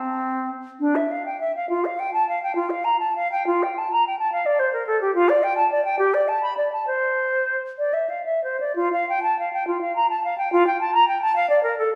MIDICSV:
0, 0, Header, 1, 2, 480
1, 0, Start_track
1, 0, Tempo, 589971
1, 1373, Time_signature, 6, 3, 24, 8
1, 3283, Tempo, 560748
1, 5203, Tempo, 601202
1, 6163, Tempo, 631579
1, 7603, Tempo, 571973
1, 9766, End_track
2, 0, Start_track
2, 0, Title_t, "Flute"
2, 0, Program_c, 0, 73
2, 0, Note_on_c, 0, 60, 53
2, 405, Note_off_c, 0, 60, 0
2, 648, Note_on_c, 0, 62, 42
2, 774, Note_on_c, 0, 76, 37
2, 786, Note_off_c, 0, 62, 0
2, 901, Note_on_c, 0, 77, 39
2, 913, Note_off_c, 0, 76, 0
2, 1015, Note_off_c, 0, 77, 0
2, 1018, Note_on_c, 0, 79, 38
2, 1133, Note_off_c, 0, 79, 0
2, 1139, Note_on_c, 0, 76, 38
2, 1255, Note_off_c, 0, 76, 0
2, 1264, Note_on_c, 0, 77, 38
2, 1370, Note_off_c, 0, 77, 0
2, 1375, Note_on_c, 0, 65, 48
2, 1502, Note_on_c, 0, 77, 44
2, 1515, Note_off_c, 0, 65, 0
2, 1617, Note_on_c, 0, 79, 52
2, 1629, Note_off_c, 0, 77, 0
2, 1731, Note_off_c, 0, 79, 0
2, 1735, Note_on_c, 0, 81, 41
2, 1845, Note_off_c, 0, 81, 0
2, 1857, Note_on_c, 0, 77, 39
2, 1964, Note_off_c, 0, 77, 0
2, 1971, Note_on_c, 0, 79, 47
2, 2069, Note_off_c, 0, 79, 0
2, 2074, Note_on_c, 0, 65, 45
2, 2193, Note_on_c, 0, 77, 46
2, 2205, Note_off_c, 0, 65, 0
2, 2310, Note_on_c, 0, 82, 45
2, 2322, Note_off_c, 0, 77, 0
2, 2431, Note_off_c, 0, 82, 0
2, 2436, Note_on_c, 0, 81, 41
2, 2556, Note_off_c, 0, 81, 0
2, 2563, Note_on_c, 0, 77, 47
2, 2684, Note_off_c, 0, 77, 0
2, 2694, Note_on_c, 0, 79, 49
2, 2812, Note_off_c, 0, 79, 0
2, 2817, Note_on_c, 0, 65, 58
2, 2950, Note_on_c, 0, 79, 45
2, 2962, Note_off_c, 0, 65, 0
2, 3072, Note_on_c, 0, 81, 53
2, 3084, Note_off_c, 0, 79, 0
2, 3178, Note_off_c, 0, 81, 0
2, 3190, Note_on_c, 0, 82, 52
2, 3291, Note_off_c, 0, 82, 0
2, 3309, Note_on_c, 0, 79, 46
2, 3406, Note_off_c, 0, 79, 0
2, 3411, Note_on_c, 0, 81, 53
2, 3520, Note_off_c, 0, 81, 0
2, 3524, Note_on_c, 0, 77, 56
2, 3641, Note_on_c, 0, 74, 55
2, 3654, Note_off_c, 0, 77, 0
2, 3757, Note_on_c, 0, 72, 50
2, 3770, Note_off_c, 0, 74, 0
2, 3867, Note_off_c, 0, 72, 0
2, 3872, Note_on_c, 0, 70, 53
2, 3987, Note_off_c, 0, 70, 0
2, 3991, Note_on_c, 0, 69, 61
2, 4107, Note_off_c, 0, 69, 0
2, 4114, Note_on_c, 0, 67, 55
2, 4226, Note_off_c, 0, 67, 0
2, 4231, Note_on_c, 0, 65, 75
2, 4353, Note_on_c, 0, 74, 64
2, 4366, Note_off_c, 0, 65, 0
2, 4475, Note_on_c, 0, 79, 63
2, 4488, Note_off_c, 0, 74, 0
2, 4589, Note_off_c, 0, 79, 0
2, 4594, Note_on_c, 0, 81, 56
2, 4711, Note_off_c, 0, 81, 0
2, 4719, Note_on_c, 0, 74, 53
2, 4825, Note_off_c, 0, 74, 0
2, 4830, Note_on_c, 0, 79, 62
2, 4946, Note_off_c, 0, 79, 0
2, 4951, Note_on_c, 0, 67, 65
2, 5081, Note_on_c, 0, 74, 58
2, 5094, Note_off_c, 0, 67, 0
2, 5202, Note_on_c, 0, 81, 58
2, 5214, Note_off_c, 0, 74, 0
2, 5316, Note_off_c, 0, 81, 0
2, 5321, Note_on_c, 0, 83, 46
2, 5430, Note_off_c, 0, 83, 0
2, 5434, Note_on_c, 0, 74, 42
2, 5550, Note_off_c, 0, 74, 0
2, 5555, Note_on_c, 0, 81, 49
2, 5667, Note_off_c, 0, 81, 0
2, 5672, Note_on_c, 0, 72, 54
2, 6217, Note_off_c, 0, 72, 0
2, 6391, Note_on_c, 0, 74, 38
2, 6505, Note_on_c, 0, 76, 39
2, 6516, Note_off_c, 0, 74, 0
2, 6627, Note_on_c, 0, 77, 36
2, 6638, Note_off_c, 0, 76, 0
2, 6744, Note_off_c, 0, 77, 0
2, 6749, Note_on_c, 0, 76, 36
2, 6880, Note_off_c, 0, 76, 0
2, 6887, Note_on_c, 0, 72, 33
2, 7007, Note_off_c, 0, 72, 0
2, 7012, Note_on_c, 0, 74, 41
2, 7124, Note_off_c, 0, 74, 0
2, 7129, Note_on_c, 0, 65, 61
2, 7251, Note_off_c, 0, 65, 0
2, 7259, Note_on_c, 0, 77, 45
2, 7373, Note_off_c, 0, 77, 0
2, 7384, Note_on_c, 0, 79, 51
2, 7484, Note_off_c, 0, 79, 0
2, 7489, Note_on_c, 0, 81, 41
2, 7599, Note_off_c, 0, 81, 0
2, 7612, Note_on_c, 0, 77, 40
2, 7723, Note_off_c, 0, 77, 0
2, 7728, Note_on_c, 0, 79, 50
2, 7844, Note_off_c, 0, 79, 0
2, 7849, Note_on_c, 0, 65, 42
2, 7961, Note_off_c, 0, 65, 0
2, 7966, Note_on_c, 0, 77, 50
2, 8082, Note_off_c, 0, 77, 0
2, 8090, Note_on_c, 0, 82, 52
2, 8201, Note_off_c, 0, 82, 0
2, 8206, Note_on_c, 0, 81, 50
2, 8319, Note_off_c, 0, 81, 0
2, 8326, Note_on_c, 0, 77, 54
2, 8435, Note_off_c, 0, 77, 0
2, 8440, Note_on_c, 0, 79, 57
2, 8554, Note_off_c, 0, 79, 0
2, 8564, Note_on_c, 0, 65, 76
2, 8676, Note_off_c, 0, 65, 0
2, 8684, Note_on_c, 0, 79, 54
2, 8795, Note_off_c, 0, 79, 0
2, 8802, Note_on_c, 0, 81, 66
2, 8909, Note_off_c, 0, 81, 0
2, 8914, Note_on_c, 0, 82, 54
2, 9025, Note_off_c, 0, 82, 0
2, 9030, Note_on_c, 0, 79, 53
2, 9141, Note_off_c, 0, 79, 0
2, 9146, Note_on_c, 0, 81, 71
2, 9259, Note_off_c, 0, 81, 0
2, 9264, Note_on_c, 0, 77, 64
2, 9374, Note_off_c, 0, 77, 0
2, 9379, Note_on_c, 0, 74, 60
2, 9488, Note_off_c, 0, 74, 0
2, 9493, Note_on_c, 0, 70, 61
2, 9614, Note_off_c, 0, 70, 0
2, 9619, Note_on_c, 0, 69, 56
2, 9750, Note_off_c, 0, 69, 0
2, 9766, End_track
0, 0, End_of_file